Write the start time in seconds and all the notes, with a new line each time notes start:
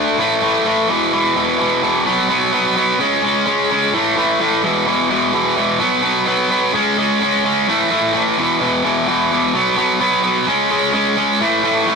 Already playing: D3 A3 D4
0.18 A2 E3 A3
0.42 A2 E3 A3
0.65 A2 E3 A3
0.88 E2 B2 E3
1.12 E2 B2 E3
1.36 E2 B2 E3
1.59 E2 B2 E3
1.83 E2 B2 E3
2.05 B2 F#3 B3
2.29 B2 F#3 B3
2.53 B2 F#3 B3
2.76 B2 F#3 B3
2.99 C#3 G#3 C#4
3.22 C#3 G#3 C#4
3.46 C#3 G#3 C#4
3.70 C#3 G#3 C#4
3.94 A2 E3 A3
4.16 A2 E3 A3
4.39 A2 E3 A3
4.63 E2 B2 E3
4.86 E2 B2 E3
5.10 E2 B2 E3
5.33 E2 B2 E3
5.57 E2 B2 E3
5.79 B2 F#3 B3
6.03 B2 F#3 B3
6.26 B2 F#3 B3
6.50 B2 F#3 B3
6.73 C#3 G#3 C#4
6.97 C#3 G#3 C#4
7.20 C#3 G#3 C#4
7.44 C#3 G#3 C#4
7.68 A2 E3 A3
7.91 A2 E3 A3
8.14 A2 E3 A3
8.37 E2 B2 E3
8.61 E2 B2 E3
8.84 E2 B2 E3
9.07 E2 B2 E3
9.31 E2 B2 E3
9.54 B2 F#3 B3
9.77 B2 F#3 B3
10.00 B2 F#3 B3
10.23 B2 F#3 B3
10.47 C#3 G#3 C#4
10.70 C#3 G#3 C#4
10.93 C#3 G#3 C#4
11.17 C#3 G#3 C#4
11.40 A2 E3 A3
11.63 A2 E3 A3
11.87 A2 E3 A3